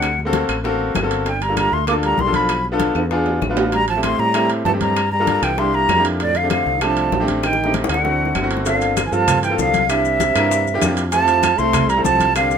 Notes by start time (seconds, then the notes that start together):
Already playing: D2 D3 F#5
0.02 high bongo, high conga, high timbale, claves
0.18 high bongo, high conga
0.25 A#3 C4 F#4 A4
0.33 high bongo, high conga, high timbale
0.48 A1, high bongo, high conga, high timbale, claves
0.64 A#3 C4 F#4 A4, high bongo, high conga
0.80 high conga
0.95 G1, high bongo, low bongo, high conga, high timbale, low timbale, claves
1.03 A#3 C4 F#4 A4
1.11 high bongo, high timbale
1.26 D3 G5, high bongo, high conga, high timbale
1.41 G3 A#5, high bongo, high conga, high timbale
1.49 A#3 D4 F4 A4
1.57 G3 A#5, high bongo, high conga, high timbale, claves
1.72 D2 A3 C6, high bongo, high conga
1.87 A#3 D4 F4 A4 D6, high bongo, high conga, high timbale, claves
2.02 G3 A#5, high conga, high timbale
2.18 B1 G3 C6, high bongo, low bongo, high conga
2.26 A#3 D4 F4 A4
2.33 F3 B5, high bongo, high conga, high timbale
2.48 high bongo, high conga, high timbale, claves
2.64 high bongo, high conga
2.72 B3 D4 F4 A4
2.80 high bongo, high conga, high timbale
2.95 E2, high bongo, high conga, high timbale, claves
3.11 B3 D4 F4 G#4, high bongo, high conga
3.26 high conga, low timbale
3.42 A1, high bongo, low bongo, high conga, low timbale, claves
3.50 B3 D4 F4 B4
3.57 high conga, low timbale
3.72 G3 A#5, high bongo, high conga, high timbale
3.88 F3 A5, high bongo, high conga, high timbale
3.96 A3 C4 E4 G4
4.03 A3 C6, high bongo, high conga, high timbale, claves
4.19 A2 G3 A#5, high bongo, high conga
4.34 A3 C4 E4 G4, high bongo, high conga, high timbale, claves
4.50 high conga, high timbale
4.65 G2 E3 A5, high bongo, low bongo, high conga, low timbale
4.73 A3 C4 E4 G4
4.81 G3 A#5, high bongo, high conga, high timbale
4.96 high bongo, high conga, high timbale, claves
5.11 G3 A#5, high bongo, high conga
5.20 A#3 D4 F4 A4
5.27 high bongo, high conga, high timbale
5.42 C2 E3 G5, high bongo, high conga, high timbale, claves
5.58 G3 A#3 D4 E4 G4 C6, high bongo, high conga
5.74 G3 A#5, high conga
5.89 F2, high bongo, low bongo, high conga, high timbale, low timbale, claves
5.97 A#3 D4 E4 G4
6.04 high bongo, high conga, high timbale
6.19 A2 D5, high bongo, high conga, high timbale
6.35 D3 F5, high bongo, high conga, high timbale
6.43 A3 C4 D4 G4
6.50 D3 F5, high bongo, high conga, high timbale, claves
6.66 C2, high bongo, high conga
6.81 F3 A3 C4 D4 G4 A5, high bongo, high conga, high timbale, claves
6.97 high conga, high timbale
7.12 A1, high bongo, low bongo, high conga, low timbale
7.20 A3 C4 D4 G4
7.28 high bongo, high conga, high timbale
7.43 D#3 G5, high bongo, high conga, high timbale, claves
7.53 high bongo
7.59 high conga
7.64 A3 C4 D#4 G4, high bongo
7.74 high conga, high timbale
7.84 low bongo
7.89 D2 D3 F#5, high conga, high timbale, claves
7.94 low bongo
8.04 A3 C4 E4 F#4, low bongo, high conga
8.20 high conga
8.25 low bongo
8.35 G1, high conga, high timbale, low timbale, claves
8.42 A3 C4 E4 F#4
8.51 high conga, high timbale
8.57 low bongo
8.65 D3 A#3 C4 F4 A4 F5, high bongo, high conga, high timbale, maracas
8.81 high bongo, high conga, high timbale, maracas
8.97 high bongo, high conga, high timbale, claves, maracas
9.05 E3 G#5
9.11 G2 F3 A#3 C4 F4 A4 A5, high bongo, high conga, maracas
9.28 high bongo, high conga, low conga, high timbale, claves, maracas
9.43 E3 G5, high conga, high timbale, maracas
9.50 A#3 C4 F4 A4
9.58 C2 D3 F5, high bongo, low bongo, high conga, maracas
9.74 high bongo, high conga, high timbale, maracas
9.89 C3 A#3 D4 E4 G4 E5, high bongo, high conga, high timbale, claves, maracas
10.05 high bongo, high conga, maracas
10.20 high bongo, high conga, high timbale, maracas
10.35 G2 A#3 D4 E4 A#4, high bongo, high conga, high timbale, claves, maracas
10.51 high bongo, high conga, maracas
10.67 high conga, maracas
10.74 A#3 D4 E4 G4
10.82 F2, high bongo, low bongo, high conga, high timbale, low timbale, claves, maracas
10.97 high bongo, high conga, high timbale, maracas
11.11 F3 A3 C4 E4 G4 A5, high bongo, high conga, high timbale, maracas
11.28 high bongo, high conga, high timbale, maracas
11.43 high bongo, high conga, high timbale, claves, maracas
11.57 C2 A3 C4 E4 A4 C6, high bongo, high conga, maracas
11.73 high bongo, high conga, low conga, high timbale, claves, maracas
11.88 G3 A#5, high conga, high timbale, maracas
11.97 A3 C4 E4 A4
12.04 C2 F3 A5, high bongo, low bongo, high conga, maracas
12.20 high bongo, high conga, high timbale, maracas
12.35 D3 A#3 C4 D4 G4 F5, high bongo, high conga, high timbale, claves, maracas
12.51 high bongo, high conga, maracas